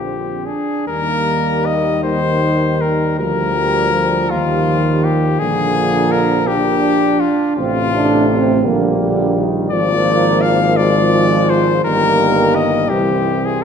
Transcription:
Already playing: tuba A#1, trombone D3, euphonium F3, cornet G4
0.04 french horn section C4
0.46 french horn section D4, cornet G#4
0.88 tuba D#2, euphonium D#3, trombone G3, french horn section A#3, cornet A#4
1.66 cornet D#5
2.04 trombone D#3, french horn section G3, cornet C5
2.81 cornet A#4
3.18 tuba D2, trombone F3, euphonium F3, cornet A#4
3.56 trombone G3
3.93 trombone F3
4.30 tuba D#2, trombone D#3, cornet F4
5.04 cornet G4
5.39 tuba A#1, trombone D3, euphonium F3, french horn section A#3, cornet G#4
6.12 cornet A#4
6.47 trombone A#2, french horn section D4, cornet G4
7.20 cornet F4
7.56 tuba A1, trombone C3, euphonium A3, french horn section C4, cornet F4
7.93 french horn section D4
8.29 french horn section C4
8.64 tuba A#1, trombone D3, euphonium G3, french horn section A#3
9.01 trombone D3
9.37 trombone D#3
9.71 tuba G#1, trombone F3, euphonium F3, french horn section A#3, cornet D5
10.42 cornet F5
10.77 trombone F3, french horn section G#3, cornet D5
11.50 cornet C5
11.84 tuba G1, trombone D#3, euphonium G3, french horn section A#3, cornet A#4
12.55 cornet D#5
12.90 tuba C2, trombone E3, french horn section C4, cornet G4
13.46 cornet G#4

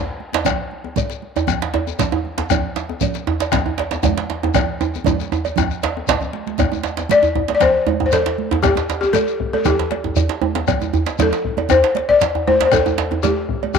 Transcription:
0.09 bombo rim
0.20 djembe slap, high conga
0.32 djembe slap, high conga, djembe tone
0.45 bombo rim, bombo low, cowbell, djembe slap, low conga, djembe bass, shekere
0.71 high conga
0.84 djembe tone
0.96 bombo low, cowbell, djembe slap, high conga, low conga, shekere
1.10 djembe slap, shekere
1.22 djembe slap, high conga
1.36 bombo rim, cowbell, djembe slap, djembe tone, shekere
1.47 bombo rim, bombo low, low conga, djembe bass, shekere
1.61 djembe slap, high conga
1.74 cowbell, djembe slap, djembe tone
1.87 djembe tone, shekere
1.99 bombo low, cowbell, djembe slap, high conga, low conga, shekere
2.12 bombo rim, djembe tone
2.25 djembe slap, high conga
2.38 djembe slap, djembe tone, high conga
2.50 bombo rim, bombo low, cowbell, djembe tone, djembe bass, low conga, shekere
2.76 djembe slap, high conga, shekere
2.89 djembe tone
3.01 bombo low, cowbell, djembe slap, high conga, low conga, shekere
3.14 djembe slap, shekere
3.27 djembe slap, high conga, djembe tone
3.40 bombo rim, cowbell, djembe slap, shekere
3.42 djembe slap
3.52 bombo rim, bombo low, djembe slap, low conga, djembe bass, shekere
3.66 djembe slap, djembe tone
3.78 cowbell, djembe slap
3.91 djembe slap, djembe tone, shekere
4.03 bombo low, cowbell, djembe tone, high conga, low conga, shekere
4.17 bombo rim, djembe slap
4.30 djembe slap, high conga
4.32 djembe slap
4.43 djembe slap, high conga, djembe tone
4.54 bombo rim, bombo low, cowbell, djembe slap, high conga, djembe tone, low conga, djembe bass, shekere
4.81 bombo rim, djembe tone, shekere
4.95 djembe tone, shekere
5.04 bombo low, cowbell, high conga, djembe tone, low conga, shekere
5.20 bombo rim, djembe slap, shekere
5.32 djembe tone, shekere
5.44 cowbell, djembe slap, high conga, djembe tone, shekere
5.56 bombo rim, bombo low, djembe tone, low conga, djembe bass, shekere
5.71 bombo rim, shekere
5.82 cowbell, djembe slap, high conga, shekere
5.97 bombo rim, djembe slap, djembe tone
6.07 bombo low, cowbell, djembe slap, low conga, djembe bass, shekere
6.21 low conga, djembe bass, shekere
6.33 djembe slap, high conga
6.47 djembe slap, high conga
6.58 bombo rim, bombo low, cowbell, djembe tone, low conga, djembe bass, shekere
6.72 djembe tone, high conga, shekere
6.83 djembe slap, shekere
6.97 bombo rim, djembe slap, shekere
6.99 djembe slap, djembe tone
7.09 balafon D5, cowbell, djembe slap, high conga, low conga, shekere
7.23 djembe slap, djembe tone, shekere
7.35 bombo low, djembe tone
7.48 cowbell, djembe slap, high conga, djembe tone
7.55 balafon D5
7.60 balafon C5, bombo rim, djembe slap, low conga, djembe bass, shekere
7.75 djembe slap
7.87 cowbell, djembe tone, high conga
8.00 bombo low, djembe slap, djembe tone
8.06 balafon C5
8.12 balafon A4, cowbell, djembe slap, low conga, shekere
8.26 djembe slap
8.38 djembe slap, high conga
8.51 djembe slap, djembe tone
8.62 balafon G4, bombo rim, bombo low, cowbell, djembe tone, low conga, djembe bass, shekere
8.75 djembe slap, high conga, shekere
8.89 djembe slap, shekere
9.01 balafon G4, bombo rim, djembe slap, djembe tone, shekere
9.13 balafon A4, cowbell, djembe slap, high conga, low conga, shekere
9.27 djembe slap, high conga, shekere
9.40 bombo low
9.53 balafon A4, cowbell, djembe tone, high conga
9.65 balafon G4, bombo rim, djembe tone, low conga, djembe bass, shekere
9.79 djembe slap
9.91 cowbell, djembe slap, high conga
10.04 bombo low, djembe slap, djembe tone
10.16 cowbell, djembe bass, low conga, shekere
10.29 djembe slap
10.42 djembe tone, high conga
10.55 djembe slap, djembe tone
10.67 bombo rim, bombo low, cowbell, low conga, djembe bass, shekere
10.80 high conga, djembe tone, shekere
10.93 djembe bass, shekere
11.06 bombo rim, djembe slap, djembe tone, shekere
11.19 balafon A4, cowbell, djembe slap, high conga, djembe tone, low conga, shekere
11.32 djembe slap, shekere
11.45 bombo low
11.57 cowbell, high conga, djembe tone
11.69 balafon C5, bombo rim, low conga, djembe bass, shekere
11.84 djembe slap
11.95 cowbell, djembe slap, high conga
12.09 balafon D5, bombo low, djembe slap, djembe tone
12.21 cowbell, djembe slap, low conga, shekere
12.35 djembe tone
12.47 balafon C5, high conga, djembe tone
12.60 djembe slap, djembe tone
12.65 balafon C5
12.72 balafon A4, bombo rim, bombo low, cowbell, djembe tone, djembe bass, low conga, shekere
12.86 djembe tone, high conga, shekere
12.98 bombo rim, djembe slap, shekere
13.11 bombo rim, djembe tone
13.23 balafon G4, cowbell, djembe slap, djembe tone, high conga, low conga, shekere
13.37 bombo rim
13.49 bombo rim, bombo low
13.63 cowbell, djembe slap, djembe tone, high conga
13.74 balafon G4, bombo rim, djembe slap, djembe bass, low conga, shekere

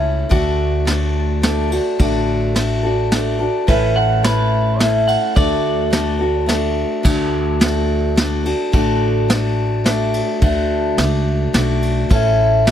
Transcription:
Already playing: upright bass C#2, steel-string acoustic guitar A3 C#4 E4 A4
0.29 upright bass D2, steel-string acoustic guitar D3 A3 D4 F#4 A4, kick, ride
0.85 steel-string acoustic guitar A3 D4 F#4 A4, snare, ride
1.42 steel-string acoustic guitar A3 D4 F#4 A4, snare, ride
1.71 steel-string acoustic guitar D4 F#4 A4, ride
1.99 upright bass A1, steel-string acoustic guitar D3 A3 D4 F#4 A4, kick, ride
2.54 steel-string acoustic guitar A3 D4 F#4 A4, snare, ride
2.83 steel-string acoustic guitar D4 F#4 A4
3.11 steel-string acoustic guitar A3 D4 F#4 A4, snare, ride
3.39 steel-string acoustic guitar D4 F#4 A4
3.67 upright bass A1, steel-string acoustic guitar A2 E3 A3 C#4 E4 A4, clean electric guitar B4, kick, ride
3.96 clean electric guitar F#5
4.23 steel-string acoustic guitar A3 C#4 E4 A4, clean electric guitar B4, snare, ride
4.79 steel-string acoustic guitar A3 C#4 E4 A4, clean electric guitar E5, snare, ride
5.08 clean electric guitar F#5, ride
5.35 upright bass D2, steel-string acoustic guitar D3 A3 D4 F#4 A4, clean electric guitar D5, kick, ride
5.90 steel-string acoustic guitar A3 D4 F#4 A4, snare, ride
6.19 steel-string acoustic guitar D4 F#4 A4
6.46 steel-string acoustic guitar A3 D4 F#4 A4, snare, ride
7.03 upright bass D2, steel-string acoustic guitar D3 A3 D4 F#4 A4, kick, crash
7.60 steel-string acoustic guitar A3 D4 F#4 A4, snare, ride
8.16 steel-string acoustic guitar A3 D4 F#4 A4, snare, ride
8.44 steel-string acoustic guitar D4 F#4 A4, ride
8.72 upright bass A1, steel-string acoustic guitar D3 A3 D4 F#4 A4, kick, ride
9.28 steel-string acoustic guitar A3 D4 F#4 A4, snare, ride
9.84 steel-string acoustic guitar A3 D4 F#4 A4, snare, ride
10.14 ride
10.41 upright bass D2, steel-string acoustic guitar D3 A3 D4 F#4 A4, kick, ride
10.97 upright bass C#2, steel-string acoustic guitar A3 D4 F#4 A4, snare, ride
11.53 upright bass B1, steel-string acoustic guitar A3 D4 F#4 A4, snare, ride
11.82 ride
12.09 upright bass A1, steel-string acoustic guitar A2 E3 A3 C#4 E4 A4, kick, ride
12.65 steel-string acoustic guitar A3 C#4 E4, snare, ride

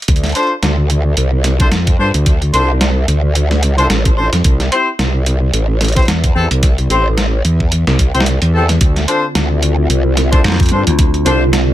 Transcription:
0.02 closed hi-hat
0.08 wobble bass D2, kick, closed hi-hat
0.16 closed hi-hat
0.24 snare, closed hi-hat
0.26 closed hi-hat
0.29 closed hi-hat
0.32 closed hi-hat
0.35 horn section D4 F4 A4 C5, closed hi-hat
0.39 closed hi-hat
0.43 closed hi-hat
0.47 closed hi-hat
0.62 wobble bass D2, snare, closed hi-hat
0.90 closed hi-hat
1.17 wobble bass C2, closed hi-hat
1.44 snare, closed hi-hat
1.60 horn section D4 F4 A4 C5, kick, closed hi-hat
1.72 wobble bass F2, snare, closed hi-hat
1.87 kick, closed hi-hat
1.99 wobble bass G2, horn section D4 F4 A4 C5
2.14 wobble bass D2, closed hi-hat
2.26 kick, closed hi-hat
2.42 closed hi-hat
2.53 wobble bass C2, horn section D4 F4 A4 C5, closed hi-hat
2.81 snare, closed hi-hat
3.08 wobble bass D2, closed hi-hat
3.35 closed hi-hat
3.51 snare
3.63 wobble bass C#2, closed hi-hat
3.78 horn section D4 F4 A4 C5, closed hi-hat
3.90 wobble bass A1, snare, closed hi-hat
4.05 kick, closed hi-hat
4.17 horn section D4 F4 A4 C5
4.33 wobble bass F2, snare, closed hi-hat
4.44 wobble bass C2, kick, closed hi-hat
4.60 snare, closed hi-hat
4.71 horn section C4 E4 G4 C5, closed hi-hat
4.99 wobble bass C2, snare, closed hi-hat
5.26 closed hi-hat
5.53 wobble bass A1, closed hi-hat
5.81 snare, closed hi-hat
5.84 closed hi-hat
5.88 closed hi-hat
5.92 horn section C4 E4 G4 C5, closed hi-hat
5.96 kick, closed hi-hat
5.99 closed hi-hat
6.02 closed hi-hat
6.05 wobble bass E2, snare, closed hi-hat
6.08 closed hi-hat
6.24 kick, closed hi-hat
6.35 wobble bass E2, horn section C4 E4 G4 A4
6.51 wobble bass C2, closed hi-hat
6.63 kick, closed hi-hat
6.78 closed hi-hat
6.90 wobble bass A1, horn section C4 E4 G4 C5, closed hi-hat
7.18 snare, closed hi-hat
7.45 wobble bass E2, closed hi-hat
7.60 kick
7.72 closed hi-hat
7.87 wobble bass C2, snare
7.99 kick, closed hi-hat
8.14 wobble bass C2, horn section C4 E4 G4 C5, closed hi-hat
8.20 snare
8.26 closed hi-hat
8.42 wobble bass E2, closed hi-hat
8.53 horn section C4 E4 G4 A4
8.69 snare, closed hi-hat
8.81 wobble bass D2, ambient pad D3 C4 F4, kick, closed hi-hat
8.96 snare, closed hi-hat
9.08 horn section D4 F4 A4 C5, closed hi-hat
9.35 wobble bass D2, snare, closed hi-hat
9.63 closed hi-hat
9.89 wobble bass C2, closed hi-hat
10.17 snare, closed hi-hat
10.32 horn section D4 F4 A4 C5, kick, closed hi-hat
10.44 slap bass F2, snare, closed hi-hat
10.48 snare
10.52 snare
10.56 snare, closed hi-hat
10.60 kick, closed hi-hat
10.66 closed hi-hat
10.69 wobble bass G2, horn section D4 F4 A4 C5, closed hi-hat
10.87 slap bass D2, closed hi-hat
10.99 kick, closed hi-hat
11.14 closed hi-hat
11.26 wobble bass C2, horn section D4 F4 A4 C5, closed hi-hat
11.53 snare, closed hi-hat

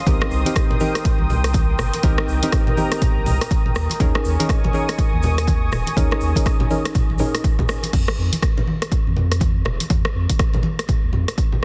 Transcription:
Already playing: analog synth pad C6 D#6
0.06 sub bass C2, synth stab C4 D#4 G4 A#4, analog synth pad A#4 G5, kick, closed hi-hat, high conga, shaker
0.21 cross-stick, muted conga
0.31 sub bass C2, shaker
0.45 synth stab C4 D#4 G4 A#4, closed hi-hat, muted conga, high conga, shaker
0.56 kick, cross-stick, closed hi-hat, shaker
0.70 muted conga, high conga, low conga
0.80 synth stab C4 D#4 G4 A#4, high conga, shaker
0.95 cross-stick, closed hi-hat, shaker
1.04 kick, closed hi-hat, muted conga, shaker
1.19 sub bass C2, high conga
1.30 muted conga, low conga, shaker
1.44 cross-stick, closed hi-hat, shaker
1.53 kick, closed hi-hat, muted conga, high conga, shaker
1.78 sub bass G1, cross-stick, low conga, shaker
1.93 closed hi-hat, muted conga, shaker
2.03 sub bass C2, synth stab C4 D#4 G4 A#4, analog synth pad A#5, kick, closed hi-hat, high conga, shaker
2.18 cross-stick, muted conga
2.28 sub bass C2, shaker
2.42 synth stab C4 D#4 G4 A#4, closed hi-hat, muted conga, high conga, shaker
2.52 kick, cross-stick, closed hi-hat, shaker
2.67 muted conga, low conga
2.77 synth stab C4 D#4 G4 A#4, high conga, shaker
2.92 cross-stick, closed hi-hat, shaker
3.02 kick, closed hi-hat, muted conga, low conga, shaker
3.17 sub bass A#1
3.26 sub bass C2, muted conga, low conga, shaker
3.41 cross-stick, closed hi-hat, shaker
3.50 kick, closed hi-hat, muted conga, shaker
3.66 low conga
3.75 sub bass D#2, cross-stick, shaker
3.90 closed hi-hat, muted conga, shaker
4.00 sub bass D#2, synth stab C#4 D#4 G#4 A#4, analog synth pad G#5 C#6 D#6, kick, closed hi-hat, high conga, shaker
4.15 cross-stick, muted conga
4.25 sub bass D#2, shaker
4.39 synth stab C#4 D#4 G#4 A#4, closed hi-hat, muted conga, high conga, shaker
4.49 kick, cross-stick, closed hi-hat, shaker
4.64 muted conga, high conga, low conga
4.73 synth stab C#4 D#4 G#4 A#4, high conga, shaker
4.89 cross-stick, closed hi-hat, shaker
4.98 kick, closed hi-hat, muted conga, shaker
5.13 sub bass D#2, high conga
5.23 muted conga, low conga, shaker
5.38 cross-stick, closed hi-hat, shaker
5.47 kick, closed hi-hat, muted conga, high conga, shaker
5.72 sub bass D#1, cross-stick, low conga, shaker
5.87 closed hi-hat, muted conga, shaker
5.97 sub bass D#2, synth stab C#4 D#4 G#4 A#4, kick, closed hi-hat, high conga, shaker
6.11 cross-stick, muted conga
6.21 sub bass D#2, shaker
6.35 synth stab C#4 D#4 G#4 A#4, kick, closed hi-hat, muted conga, high conga, shaker
6.46 kick, cross-stick, closed hi-hat, shaker
6.60 muted conga, high conga, low conga
6.70 synth stab C#4 D#4 G#4 A#4, high conga, shaker
6.85 cross-stick, closed hi-hat, shaker
6.95 kick, closed hi-hat, muted conga, low conga, shaker
7.10 sub bass A#1, high conga
7.19 synth stab C#4 D#4 G#4 A#4, muted conga, low conga, shaker
7.35 cross-stick, closed hi-hat, shaker
7.44 kick, closed hi-hat, muted conga, shaker
7.59 kick, low conga
7.69 cross-stick, shaker
7.83 closed hi-hat, muted conga, shaker
7.93 sub bass F2, kick, closed hi-hat, crash, high conga
8.07 cross-stick, muted conga
8.18 sub bass F2
8.33 closed hi-hat, muted conga, high conga
8.42 kick, cross-stick, closed hi-hat
8.57 muted conga, high conga, low conga
8.67 high conga
8.82 cross-stick, closed hi-hat
8.92 kick, closed hi-hat, muted conga
9.07 sub bass F2, high conga
9.16 muted conga, low conga
9.32 cross-stick, closed hi-hat
9.40 kick, closed hi-hat, muted conga, high conga
9.65 sub bass F1, cross-stick, low conga
9.80 closed hi-hat, muted conga
9.90 sub bass F2, kick, closed hi-hat, high conga
10.05 cross-stick, muted conga
10.15 sub bass F2
10.29 kick, closed hi-hat, muted conga, high conga
10.39 kick, cross-stick, closed hi-hat
10.53 muted conga, low conga
10.63 high conga
10.79 cross-stick, closed hi-hat
10.88 kick, closed hi-hat, muted conga, low conga
11.03 sub bass D#2
11.13 sub bass F2, muted conga, low conga
11.28 cross-stick, closed hi-hat
11.38 kick, closed hi-hat, muted conga
11.52 low conga

